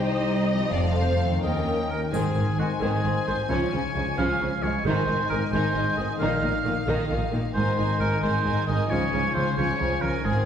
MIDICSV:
0, 0, Header, 1, 11, 480
1, 0, Start_track
1, 0, Key_signature, -4, "major"
1, 0, Tempo, 461538
1, 755, Time_signature, 6, 3, 24, 8
1, 3637, Tempo, 450113
1, 11055, End_track
2, 0, Start_track
2, 0, Title_t, "Violin section"
2, 0, Program_c, 0, 48
2, 39, Note_on_c, 0, 72, 64
2, 506, Note_off_c, 0, 72, 0
2, 521, Note_on_c, 0, 75, 62
2, 754, Note_off_c, 0, 75, 0
2, 760, Note_on_c, 0, 77, 65
2, 1481, Note_on_c, 0, 79, 51
2, 1486, Note_off_c, 0, 77, 0
2, 2202, Note_off_c, 0, 79, 0
2, 2219, Note_on_c, 0, 80, 47
2, 5042, Note_off_c, 0, 80, 0
2, 5086, Note_on_c, 0, 80, 49
2, 6496, Note_off_c, 0, 80, 0
2, 6524, Note_on_c, 0, 77, 49
2, 7931, Note_off_c, 0, 77, 0
2, 7955, Note_on_c, 0, 80, 48
2, 8191, Note_off_c, 0, 80, 0
2, 8204, Note_on_c, 0, 80, 49
2, 8427, Note_off_c, 0, 80, 0
2, 8440, Note_on_c, 0, 80, 42
2, 8671, Note_off_c, 0, 80, 0
2, 8684, Note_on_c, 0, 80, 46
2, 8911, Note_off_c, 0, 80, 0
2, 8923, Note_on_c, 0, 80, 44
2, 9150, Note_off_c, 0, 80, 0
2, 9163, Note_on_c, 0, 80, 48
2, 9390, Note_off_c, 0, 80, 0
2, 9402, Note_on_c, 0, 80, 48
2, 9622, Note_off_c, 0, 80, 0
2, 9634, Note_on_c, 0, 80, 45
2, 9869, Note_off_c, 0, 80, 0
2, 9888, Note_on_c, 0, 80, 42
2, 10115, Note_off_c, 0, 80, 0
2, 10126, Note_on_c, 0, 80, 44
2, 10354, Note_off_c, 0, 80, 0
2, 10369, Note_on_c, 0, 80, 42
2, 10593, Note_off_c, 0, 80, 0
2, 10606, Note_on_c, 0, 80, 46
2, 10832, Note_off_c, 0, 80, 0
2, 10845, Note_on_c, 0, 80, 45
2, 11055, Note_off_c, 0, 80, 0
2, 11055, End_track
3, 0, Start_track
3, 0, Title_t, "Oboe"
3, 0, Program_c, 1, 68
3, 1482, Note_on_c, 1, 75, 61
3, 1942, Note_off_c, 1, 75, 0
3, 1984, Note_on_c, 1, 70, 49
3, 2091, Note_off_c, 1, 70, 0
3, 2216, Note_on_c, 1, 68, 51
3, 2682, Note_off_c, 1, 68, 0
3, 2697, Note_on_c, 1, 66, 54
3, 2802, Note_off_c, 1, 66, 0
3, 2932, Note_on_c, 1, 68, 60
3, 3392, Note_off_c, 1, 68, 0
3, 3410, Note_on_c, 1, 72, 54
3, 3514, Note_off_c, 1, 72, 0
3, 3636, Note_on_c, 1, 73, 62
3, 4346, Note_off_c, 1, 73, 0
3, 4366, Note_on_c, 1, 77, 70
3, 4842, Note_on_c, 1, 73, 62
3, 4858, Note_off_c, 1, 77, 0
3, 5083, Note_off_c, 1, 73, 0
3, 5091, Note_on_c, 1, 72, 69
3, 5549, Note_off_c, 1, 72, 0
3, 5555, Note_on_c, 1, 70, 61
3, 5665, Note_off_c, 1, 70, 0
3, 5793, Note_on_c, 1, 72, 68
3, 6268, Note_off_c, 1, 72, 0
3, 6279, Note_on_c, 1, 75, 68
3, 6389, Note_off_c, 1, 75, 0
3, 6520, Note_on_c, 1, 77, 64
3, 7227, Note_off_c, 1, 77, 0
3, 7953, Note_on_c, 1, 72, 75
3, 8400, Note_off_c, 1, 72, 0
3, 8439, Note_on_c, 1, 70, 68
3, 8673, Note_off_c, 1, 70, 0
3, 8682, Note_on_c, 1, 72, 75
3, 9143, Note_off_c, 1, 72, 0
3, 9150, Note_on_c, 1, 75, 74
3, 9398, Note_on_c, 1, 73, 72
3, 9414, Note_off_c, 1, 75, 0
3, 9868, Note_on_c, 1, 72, 64
3, 9884, Note_off_c, 1, 73, 0
3, 10110, Note_off_c, 1, 72, 0
3, 10120, Note_on_c, 1, 73, 75
3, 10589, Note_on_c, 1, 70, 62
3, 10605, Note_off_c, 1, 73, 0
3, 10836, Note_on_c, 1, 68, 51
3, 10852, Note_off_c, 1, 70, 0
3, 11055, Note_off_c, 1, 68, 0
3, 11055, End_track
4, 0, Start_track
4, 0, Title_t, "Harp"
4, 0, Program_c, 2, 46
4, 0, Note_on_c, 2, 48, 45
4, 0, Note_on_c, 2, 63, 37
4, 0, Note_on_c, 2, 67, 37
4, 0, Note_on_c, 2, 72, 36
4, 568, Note_on_c, 2, 53, 37
4, 613, Note_on_c, 2, 60, 34
4, 664, Note_on_c, 2, 69, 31
4, 681, Note_off_c, 2, 48, 0
4, 699, Note_off_c, 2, 72, 0
4, 704, Note_off_c, 2, 63, 0
4, 711, Note_on_c, 2, 72, 32
4, 727, Note_off_c, 2, 67, 0
4, 1293, Note_on_c, 2, 51, 34
4, 1338, Note_on_c, 2, 63, 31
4, 1385, Note_on_c, 2, 70, 30
4, 1410, Note_off_c, 2, 53, 0
4, 1432, Note_off_c, 2, 60, 0
4, 1433, Note_on_c, 2, 73, 32
4, 1457, Note_off_c, 2, 69, 0
4, 1481, Note_off_c, 2, 72, 0
4, 2142, Note_off_c, 2, 51, 0
4, 2188, Note_off_c, 2, 70, 0
4, 2212, Note_off_c, 2, 73, 0
4, 2217, Note_on_c, 2, 44, 40
4, 2446, Note_off_c, 2, 63, 0
4, 2459, Note_on_c, 2, 63, 36
4, 2695, Note_on_c, 2, 72, 39
4, 2926, Note_on_c, 2, 75, 36
4, 3147, Note_off_c, 2, 72, 0
4, 3159, Note_on_c, 2, 72, 36
4, 3378, Note_off_c, 2, 63, 0
4, 3391, Note_on_c, 2, 63, 35
4, 3633, Note_on_c, 2, 49, 46
4, 3651, Note_off_c, 2, 63, 0
4, 3653, Note_off_c, 2, 72, 0
4, 3654, Note_off_c, 2, 75, 0
4, 3656, Note_off_c, 2, 44, 0
4, 3876, Note_on_c, 2, 65, 36
4, 4119, Note_on_c, 2, 73, 39
4, 4364, Note_on_c, 2, 77, 38
4, 4592, Note_off_c, 2, 73, 0
4, 4604, Note_on_c, 2, 73, 39
4, 4831, Note_off_c, 2, 65, 0
4, 4844, Note_on_c, 2, 65, 35
4, 5083, Note_on_c, 2, 44, 45
4, 5101, Note_off_c, 2, 49, 0
4, 5103, Note_off_c, 2, 65, 0
4, 5104, Note_off_c, 2, 73, 0
4, 5105, Note_off_c, 2, 77, 0
4, 5326, Note_on_c, 2, 63, 39
4, 5564, Note_on_c, 2, 75, 43
4, 5805, Note_on_c, 2, 68, 41
4, 6027, Note_off_c, 2, 75, 0
4, 6040, Note_on_c, 2, 75, 41
4, 6270, Note_off_c, 2, 63, 0
4, 6283, Note_on_c, 2, 63, 43
4, 6522, Note_on_c, 2, 46, 52
4, 6542, Note_off_c, 2, 44, 0
4, 6544, Note_off_c, 2, 68, 0
4, 6744, Note_off_c, 2, 63, 0
4, 6757, Note_on_c, 2, 63, 40
4, 6986, Note_off_c, 2, 75, 0
4, 6999, Note_on_c, 2, 75, 47
4, 7244, Note_on_c, 2, 65, 46
4, 7470, Note_off_c, 2, 75, 0
4, 7483, Note_on_c, 2, 75, 47
4, 7713, Note_off_c, 2, 63, 0
4, 7726, Note_on_c, 2, 63, 39
4, 7966, Note_on_c, 2, 44, 49
4, 7978, Note_off_c, 2, 46, 0
4, 7979, Note_off_c, 2, 65, 0
4, 8198, Note_off_c, 2, 63, 0
4, 8211, Note_on_c, 2, 63, 43
4, 8433, Note_off_c, 2, 75, 0
4, 8446, Note_on_c, 2, 75, 45
4, 8683, Note_on_c, 2, 68, 44
4, 8908, Note_off_c, 2, 75, 0
4, 8921, Note_on_c, 2, 75, 40
4, 9154, Note_off_c, 2, 63, 0
4, 9167, Note_on_c, 2, 63, 40
4, 9403, Note_on_c, 2, 49, 48
4, 9418, Note_off_c, 2, 75, 0
4, 9419, Note_off_c, 2, 44, 0
4, 9421, Note_off_c, 2, 63, 0
4, 9639, Note_on_c, 2, 61, 38
4, 9877, Note_on_c, 2, 77, 40
4, 10115, Note_on_c, 2, 73, 41
4, 10333, Note_off_c, 2, 77, 0
4, 10346, Note_on_c, 2, 77, 40
4, 10583, Note_off_c, 2, 61, 0
4, 10596, Note_on_c, 2, 61, 37
4, 10825, Note_on_c, 2, 44, 44
4, 10850, Note_off_c, 2, 77, 0
4, 10854, Note_off_c, 2, 73, 0
4, 10855, Note_off_c, 2, 49, 0
4, 10855, Note_off_c, 2, 61, 0
4, 11055, Note_off_c, 2, 44, 0
4, 11055, Note_off_c, 2, 68, 0
4, 11055, End_track
5, 0, Start_track
5, 0, Title_t, "Violin section"
5, 0, Program_c, 3, 48
5, 0, Note_on_c, 3, 63, 50
5, 0, Note_on_c, 3, 67, 52
5, 712, Note_off_c, 3, 63, 0
5, 752, Note_off_c, 3, 67, 0
5, 755, Note_on_c, 3, 69, 43
5, 760, Note_on_c, 3, 60, 45
5, 1477, Note_on_c, 3, 61, 37
5, 1478, Note_on_c, 3, 70, 38
5, 1483, Note_off_c, 3, 69, 0
5, 1486, Note_off_c, 3, 60, 0
5, 1993, Note_off_c, 3, 70, 0
5, 2003, Note_off_c, 3, 61, 0
5, 2225, Note_on_c, 3, 60, 51
5, 2443, Note_off_c, 3, 60, 0
5, 2457, Note_on_c, 3, 60, 33
5, 2540, Note_off_c, 3, 60, 0
5, 2696, Note_on_c, 3, 56, 36
5, 2779, Note_off_c, 3, 56, 0
5, 2924, Note_on_c, 3, 60, 50
5, 3146, Note_off_c, 3, 60, 0
5, 3161, Note_on_c, 3, 60, 40
5, 3245, Note_off_c, 3, 60, 0
5, 3403, Note_on_c, 3, 56, 37
5, 3486, Note_off_c, 3, 56, 0
5, 3648, Note_on_c, 3, 61, 54
5, 3863, Note_off_c, 3, 61, 0
5, 3876, Note_on_c, 3, 61, 33
5, 3961, Note_off_c, 3, 61, 0
5, 4119, Note_on_c, 3, 56, 35
5, 4204, Note_off_c, 3, 56, 0
5, 4352, Note_on_c, 3, 61, 53
5, 4581, Note_off_c, 3, 61, 0
5, 4597, Note_on_c, 3, 61, 44
5, 4682, Note_off_c, 3, 61, 0
5, 4858, Note_on_c, 3, 56, 40
5, 4943, Note_off_c, 3, 56, 0
5, 5098, Note_on_c, 3, 63, 60
5, 5314, Note_off_c, 3, 63, 0
5, 5346, Note_on_c, 3, 63, 35
5, 5431, Note_off_c, 3, 63, 0
5, 5589, Note_on_c, 3, 60, 35
5, 5674, Note_off_c, 3, 60, 0
5, 5811, Note_on_c, 3, 63, 56
5, 6030, Note_off_c, 3, 63, 0
5, 6045, Note_on_c, 3, 63, 40
5, 6130, Note_off_c, 3, 63, 0
5, 6291, Note_on_c, 3, 60, 46
5, 6376, Note_off_c, 3, 60, 0
5, 6534, Note_on_c, 3, 63, 61
5, 6753, Note_off_c, 3, 63, 0
5, 6781, Note_on_c, 3, 63, 40
5, 6866, Note_off_c, 3, 63, 0
5, 7007, Note_on_c, 3, 58, 38
5, 7092, Note_off_c, 3, 58, 0
5, 7244, Note_on_c, 3, 63, 57
5, 7466, Note_off_c, 3, 63, 0
5, 7487, Note_on_c, 3, 63, 47
5, 7573, Note_off_c, 3, 63, 0
5, 7721, Note_on_c, 3, 58, 47
5, 7807, Note_off_c, 3, 58, 0
5, 7968, Note_on_c, 3, 63, 52
5, 8192, Note_off_c, 3, 63, 0
5, 8205, Note_on_c, 3, 63, 44
5, 8436, Note_off_c, 3, 63, 0
5, 8454, Note_on_c, 3, 63, 44
5, 8663, Note_off_c, 3, 63, 0
5, 8676, Note_on_c, 3, 63, 42
5, 8913, Note_off_c, 3, 63, 0
5, 8928, Note_on_c, 3, 63, 44
5, 9156, Note_off_c, 3, 63, 0
5, 9169, Note_on_c, 3, 63, 44
5, 9398, Note_off_c, 3, 63, 0
5, 9400, Note_on_c, 3, 61, 51
5, 9632, Note_off_c, 3, 61, 0
5, 9654, Note_on_c, 3, 61, 38
5, 9879, Note_off_c, 3, 61, 0
5, 9899, Note_on_c, 3, 61, 43
5, 10116, Note_off_c, 3, 61, 0
5, 10129, Note_on_c, 3, 61, 43
5, 10355, Note_off_c, 3, 61, 0
5, 10383, Note_on_c, 3, 61, 39
5, 10603, Note_off_c, 3, 61, 0
5, 10618, Note_on_c, 3, 61, 39
5, 10842, Note_off_c, 3, 61, 0
5, 10844, Note_on_c, 3, 60, 48
5, 11055, Note_off_c, 3, 60, 0
5, 11055, End_track
6, 0, Start_track
6, 0, Title_t, "French horn section"
6, 0, Program_c, 4, 60
6, 36, Note_on_c, 4, 55, 49
6, 38, Note_on_c, 4, 63, 47
6, 740, Note_off_c, 4, 55, 0
6, 742, Note_off_c, 4, 63, 0
6, 759, Note_on_c, 4, 60, 45
6, 762, Note_on_c, 4, 57, 44
6, 1481, Note_on_c, 4, 61, 39
6, 1485, Note_off_c, 4, 60, 0
6, 1486, Note_on_c, 4, 58, 38
6, 1487, Note_off_c, 4, 57, 0
6, 1976, Note_off_c, 4, 61, 0
6, 1978, Note_off_c, 4, 58, 0
6, 11055, End_track
7, 0, Start_track
7, 0, Title_t, "Viola section"
7, 0, Program_c, 5, 48
7, 38, Note_on_c, 5, 75, 58
7, 742, Note_off_c, 5, 75, 0
7, 754, Note_on_c, 5, 74, 54
7, 838, Note_off_c, 5, 74, 0
7, 991, Note_on_c, 5, 72, 45
7, 1231, Note_off_c, 5, 72, 0
7, 1236, Note_on_c, 5, 69, 42
7, 1319, Note_off_c, 5, 69, 0
7, 1491, Note_on_c, 5, 70, 39
7, 1851, Note_off_c, 5, 70, 0
7, 2214, Note_on_c, 5, 51, 47
7, 2436, Note_off_c, 5, 51, 0
7, 2454, Note_on_c, 5, 51, 33
7, 2537, Note_off_c, 5, 51, 0
7, 2695, Note_on_c, 5, 51, 34
7, 2779, Note_off_c, 5, 51, 0
7, 2929, Note_on_c, 5, 51, 47
7, 3148, Note_off_c, 5, 51, 0
7, 3169, Note_on_c, 5, 51, 39
7, 3252, Note_off_c, 5, 51, 0
7, 3411, Note_on_c, 5, 51, 38
7, 3494, Note_off_c, 5, 51, 0
7, 3645, Note_on_c, 5, 53, 47
7, 3866, Note_off_c, 5, 53, 0
7, 3887, Note_on_c, 5, 53, 34
7, 3972, Note_off_c, 5, 53, 0
7, 4119, Note_on_c, 5, 53, 35
7, 4205, Note_off_c, 5, 53, 0
7, 4366, Note_on_c, 5, 53, 50
7, 4588, Note_off_c, 5, 53, 0
7, 4611, Note_on_c, 5, 53, 42
7, 4697, Note_off_c, 5, 53, 0
7, 4852, Note_on_c, 5, 53, 44
7, 4937, Note_off_c, 5, 53, 0
7, 5090, Note_on_c, 5, 51, 61
7, 5310, Note_off_c, 5, 51, 0
7, 5338, Note_on_c, 5, 51, 39
7, 5424, Note_off_c, 5, 51, 0
7, 5574, Note_on_c, 5, 51, 41
7, 5659, Note_off_c, 5, 51, 0
7, 5809, Note_on_c, 5, 51, 51
7, 6018, Note_off_c, 5, 51, 0
7, 6031, Note_on_c, 5, 51, 42
7, 6116, Note_off_c, 5, 51, 0
7, 6280, Note_on_c, 5, 51, 47
7, 6366, Note_off_c, 5, 51, 0
7, 6519, Note_on_c, 5, 51, 52
7, 6745, Note_off_c, 5, 51, 0
7, 6759, Note_on_c, 5, 51, 40
7, 6844, Note_off_c, 5, 51, 0
7, 7005, Note_on_c, 5, 51, 45
7, 7091, Note_off_c, 5, 51, 0
7, 7244, Note_on_c, 5, 51, 62
7, 7466, Note_off_c, 5, 51, 0
7, 7485, Note_on_c, 5, 51, 45
7, 7571, Note_off_c, 5, 51, 0
7, 7718, Note_on_c, 5, 51, 43
7, 7803, Note_off_c, 5, 51, 0
7, 7962, Note_on_c, 5, 51, 49
7, 8186, Note_off_c, 5, 51, 0
7, 8199, Note_on_c, 5, 51, 46
7, 8416, Note_off_c, 5, 51, 0
7, 8429, Note_on_c, 5, 51, 41
7, 8658, Note_off_c, 5, 51, 0
7, 8670, Note_on_c, 5, 51, 47
7, 8910, Note_off_c, 5, 51, 0
7, 8924, Note_on_c, 5, 51, 44
7, 9134, Note_off_c, 5, 51, 0
7, 9147, Note_on_c, 5, 51, 47
7, 9386, Note_on_c, 5, 53, 47
7, 9387, Note_off_c, 5, 51, 0
7, 9608, Note_off_c, 5, 53, 0
7, 9621, Note_on_c, 5, 53, 45
7, 9845, Note_off_c, 5, 53, 0
7, 9858, Note_on_c, 5, 53, 41
7, 10085, Note_off_c, 5, 53, 0
7, 10098, Note_on_c, 5, 53, 46
7, 10326, Note_off_c, 5, 53, 0
7, 10339, Note_on_c, 5, 53, 42
7, 10561, Note_off_c, 5, 53, 0
7, 10574, Note_on_c, 5, 53, 40
7, 10819, Note_off_c, 5, 53, 0
7, 10820, Note_on_c, 5, 51, 44
7, 11055, Note_off_c, 5, 51, 0
7, 11055, End_track
8, 0, Start_track
8, 0, Title_t, "Cello section"
8, 0, Program_c, 6, 48
8, 0, Note_on_c, 6, 36, 54
8, 724, Note_off_c, 6, 36, 0
8, 758, Note_on_c, 6, 41, 50
8, 1470, Note_off_c, 6, 41, 0
8, 1487, Note_on_c, 6, 39, 42
8, 1998, Note_off_c, 6, 39, 0
8, 2220, Note_on_c, 6, 44, 52
8, 2303, Note_off_c, 6, 44, 0
8, 2460, Note_on_c, 6, 44, 35
8, 2543, Note_off_c, 6, 44, 0
8, 2701, Note_on_c, 6, 44, 38
8, 2784, Note_off_c, 6, 44, 0
8, 2936, Note_on_c, 6, 44, 50
8, 3019, Note_off_c, 6, 44, 0
8, 3172, Note_on_c, 6, 44, 37
8, 3255, Note_off_c, 6, 44, 0
8, 3404, Note_on_c, 6, 44, 36
8, 3487, Note_off_c, 6, 44, 0
8, 3634, Note_on_c, 6, 49, 53
8, 3720, Note_off_c, 6, 49, 0
8, 3878, Note_on_c, 6, 49, 40
8, 3963, Note_off_c, 6, 49, 0
8, 4124, Note_on_c, 6, 49, 40
8, 4209, Note_off_c, 6, 49, 0
8, 4359, Note_on_c, 6, 49, 52
8, 4444, Note_off_c, 6, 49, 0
8, 4600, Note_on_c, 6, 49, 38
8, 4685, Note_off_c, 6, 49, 0
8, 4840, Note_on_c, 6, 49, 37
8, 4925, Note_off_c, 6, 49, 0
8, 5079, Note_on_c, 6, 44, 58
8, 5165, Note_off_c, 6, 44, 0
8, 5324, Note_on_c, 6, 44, 41
8, 5409, Note_off_c, 6, 44, 0
8, 5567, Note_on_c, 6, 44, 42
8, 5653, Note_off_c, 6, 44, 0
8, 5802, Note_on_c, 6, 44, 56
8, 5888, Note_off_c, 6, 44, 0
8, 6048, Note_on_c, 6, 44, 42
8, 6133, Note_off_c, 6, 44, 0
8, 6287, Note_on_c, 6, 44, 40
8, 6372, Note_off_c, 6, 44, 0
8, 6527, Note_on_c, 6, 46, 65
8, 6612, Note_off_c, 6, 46, 0
8, 6773, Note_on_c, 6, 46, 40
8, 6858, Note_off_c, 6, 46, 0
8, 7004, Note_on_c, 6, 46, 44
8, 7089, Note_off_c, 6, 46, 0
8, 7239, Note_on_c, 6, 46, 55
8, 7324, Note_off_c, 6, 46, 0
8, 7482, Note_on_c, 6, 46, 43
8, 7568, Note_off_c, 6, 46, 0
8, 7725, Note_on_c, 6, 46, 45
8, 7811, Note_off_c, 6, 46, 0
8, 7966, Note_on_c, 6, 44, 53
8, 8051, Note_off_c, 6, 44, 0
8, 8201, Note_on_c, 6, 44, 46
8, 8286, Note_off_c, 6, 44, 0
8, 8441, Note_on_c, 6, 44, 50
8, 8527, Note_off_c, 6, 44, 0
8, 8682, Note_on_c, 6, 44, 50
8, 8767, Note_off_c, 6, 44, 0
8, 8922, Note_on_c, 6, 44, 49
8, 9007, Note_off_c, 6, 44, 0
8, 9166, Note_on_c, 6, 44, 45
8, 9252, Note_off_c, 6, 44, 0
8, 9402, Note_on_c, 6, 49, 51
8, 9488, Note_off_c, 6, 49, 0
8, 9645, Note_on_c, 6, 49, 46
8, 9730, Note_off_c, 6, 49, 0
8, 9882, Note_on_c, 6, 49, 45
8, 9968, Note_off_c, 6, 49, 0
8, 10114, Note_on_c, 6, 49, 44
8, 10199, Note_off_c, 6, 49, 0
8, 10355, Note_on_c, 6, 49, 49
8, 10440, Note_off_c, 6, 49, 0
8, 10597, Note_on_c, 6, 49, 44
8, 10682, Note_off_c, 6, 49, 0
8, 10838, Note_on_c, 6, 44, 47
8, 10923, Note_off_c, 6, 44, 0
8, 11055, End_track
9, 0, Start_track
9, 0, Title_t, "Timpani"
9, 0, Program_c, 7, 47
9, 2217, Note_on_c, 7, 44, 49
9, 2887, Note_off_c, 7, 44, 0
9, 5077, Note_on_c, 7, 44, 51
9, 5757, Note_off_c, 7, 44, 0
9, 11055, End_track
10, 0, Start_track
10, 0, Title_t, "Double bass section"
10, 0, Program_c, 8, 48
10, 758, Note_on_c, 8, 29, 45
10, 1206, Note_off_c, 8, 29, 0
10, 1486, Note_on_c, 8, 39, 41
10, 1944, Note_off_c, 8, 39, 0
10, 2223, Note_on_c, 8, 32, 50
10, 2306, Note_off_c, 8, 32, 0
10, 2455, Note_on_c, 8, 32, 38
10, 2539, Note_off_c, 8, 32, 0
10, 2690, Note_on_c, 8, 32, 33
10, 2773, Note_off_c, 8, 32, 0
10, 2933, Note_on_c, 8, 32, 52
10, 3016, Note_off_c, 8, 32, 0
10, 3171, Note_on_c, 8, 32, 34
10, 3254, Note_off_c, 8, 32, 0
10, 3405, Note_on_c, 8, 32, 36
10, 3488, Note_off_c, 8, 32, 0
10, 3647, Note_on_c, 8, 37, 49
10, 3732, Note_off_c, 8, 37, 0
10, 3882, Note_on_c, 8, 37, 38
10, 3967, Note_off_c, 8, 37, 0
10, 4127, Note_on_c, 8, 37, 35
10, 4212, Note_off_c, 8, 37, 0
10, 4366, Note_on_c, 8, 37, 52
10, 4451, Note_off_c, 8, 37, 0
10, 4610, Note_on_c, 8, 37, 36
10, 4695, Note_off_c, 8, 37, 0
10, 4846, Note_on_c, 8, 37, 41
10, 4931, Note_off_c, 8, 37, 0
10, 5085, Note_on_c, 8, 32, 59
10, 5170, Note_off_c, 8, 32, 0
10, 5321, Note_on_c, 8, 32, 43
10, 5407, Note_off_c, 8, 32, 0
10, 5563, Note_on_c, 8, 32, 40
10, 5649, Note_off_c, 8, 32, 0
10, 5797, Note_on_c, 8, 32, 61
10, 5882, Note_off_c, 8, 32, 0
10, 6033, Note_on_c, 8, 32, 38
10, 6118, Note_off_c, 8, 32, 0
10, 6280, Note_on_c, 8, 32, 38
10, 6365, Note_off_c, 8, 32, 0
10, 6514, Note_on_c, 8, 34, 63
10, 6599, Note_off_c, 8, 34, 0
10, 6758, Note_on_c, 8, 34, 48
10, 6843, Note_off_c, 8, 34, 0
10, 7003, Note_on_c, 8, 34, 45
10, 7088, Note_off_c, 8, 34, 0
10, 7238, Note_on_c, 8, 34, 65
10, 7324, Note_off_c, 8, 34, 0
10, 7479, Note_on_c, 8, 34, 45
10, 7565, Note_off_c, 8, 34, 0
10, 7727, Note_on_c, 8, 34, 40
10, 7813, Note_off_c, 8, 34, 0
10, 7964, Note_on_c, 8, 32, 52
10, 8050, Note_off_c, 8, 32, 0
10, 8207, Note_on_c, 8, 32, 52
10, 8292, Note_off_c, 8, 32, 0
10, 8445, Note_on_c, 8, 32, 50
10, 8530, Note_off_c, 8, 32, 0
10, 8691, Note_on_c, 8, 32, 54
10, 8776, Note_off_c, 8, 32, 0
10, 8931, Note_on_c, 8, 32, 48
10, 9017, Note_off_c, 8, 32, 0
10, 9165, Note_on_c, 8, 32, 50
10, 9251, Note_off_c, 8, 32, 0
10, 9405, Note_on_c, 8, 37, 54
10, 9490, Note_off_c, 8, 37, 0
10, 9636, Note_on_c, 8, 37, 49
10, 9722, Note_off_c, 8, 37, 0
10, 9883, Note_on_c, 8, 37, 49
10, 9968, Note_off_c, 8, 37, 0
10, 10120, Note_on_c, 8, 37, 49
10, 10206, Note_off_c, 8, 37, 0
10, 10360, Note_on_c, 8, 37, 48
10, 10445, Note_off_c, 8, 37, 0
10, 10595, Note_on_c, 8, 37, 42
10, 10681, Note_off_c, 8, 37, 0
10, 10838, Note_on_c, 8, 32, 52
10, 10924, Note_off_c, 8, 32, 0
10, 11055, End_track
11, 0, Start_track
11, 0, Title_t, "Drums"
11, 2225, Note_on_c, 9, 81, 27
11, 2329, Note_off_c, 9, 81, 0
11, 11055, End_track
0, 0, End_of_file